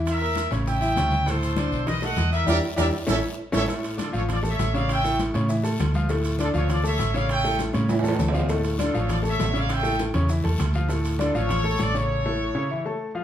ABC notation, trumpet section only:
X:1
M:4/4
L:1/8
Q:1/4=200
K:Aphr
V:1 name="Trumpet section"
[^Ae]3 z [eg]4 | [Ac]4 [=B^d] [d^f]2 [_Be] | [Bde] z [Bde] z [A^ce] z2 [Ace] | [K:Dm] z2 [FA] [A^c] [Ad] [ce]2 [df] |
[eg]2 z6 | z2 [FA] [A^c] [Ad] [ce]2 [df] | [eg]2 z6 | z2 [FA] [A^c] [Ad] [ce]2 [df] |
[eg]2 z6 | z2 [FA] [A^c]3 [Ad] [Ac]- | [A^c]6 z2 |]